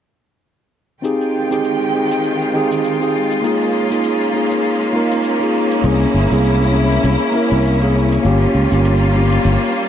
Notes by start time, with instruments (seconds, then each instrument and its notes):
1.02 string section D#3 G#3 F4 G5, tine electric piano C4 D#4 G4 G#4, cabasa
1.21 cabasa
1.50 tine electric piano C4 D#4 G4 G#4, cabasa
1.64 cabasa
1.81 cabasa
1.93 tine electric piano C4 D#4 G4 G#4
2.11 cabasa
2.24 cabasa
2.41 cabasa
2.53 tine electric piano C4 D#4 G4 G#4
2.72 cabasa
2.84 cabasa
2.99 tine electric piano C4 D#4 G4 G#4, cabasa
3.31 cabasa
3.43 tine electric piano A#3 D#4 F4 G#4, string section A#3 C#4, cabasa
3.61 cabasa
3.90 tine electric piano A#3 D#4 F4 G#4, cabasa
4.04 cabasa
4.21 cabasa
4.33 tine electric piano A#3 D#4 F4 G#4
4.51 cabasa
4.64 cabasa
4.81 cabasa
4.93 tine electric piano A#3 D#4 F4 A#4
5.11 cabasa
5.24 cabasa
5.39 tine electric piano A#3 D#4 F4 G#4, cabasa
5.71 cabasa
5.82 fretless electric bass C2, tine electric piano A#3 C#4 E4 G#4, string section E4, cabasa
6.02 cabasa
6.14 fretless electric bass G1
6.30 fretless electric bass C2, tine electric piano A#3 C#4 E4 G#4, cabasa
6.44 cabasa
6.61 cabasa
6.72 tine electric piano A#3 C#4 E4 G#4
6.91 cabasa
7.04 fretless electric bass C2, cabasa
7.22 cabasa
7.32 tine electric piano A#3 C#4 E4
7.36 tine electric piano A#4
7.51 fretless electric bass C2, cabasa
7.64 cabasa
7.79 tine electric piano A#3 C#4 E4 G#4, cabasa
8.12 cabasa
8.23 fretless electric bass G1, string section G3 A#3 F4, tine electric piano A#3 C#4 F4 G4, cabasa
8.42 cabasa
8.55 fretless electric bass C#2
8.71 fretless electric bass G1, tine electric piano A#3 C#4 F4 G4, cabasa
8.84 cabasa
9.02 cabasa
9.14 tine electric piano A#3 C#4 F4 G4
9.32 cabasa
9.44 fretless electric bass G1, cabasa
9.62 cabasa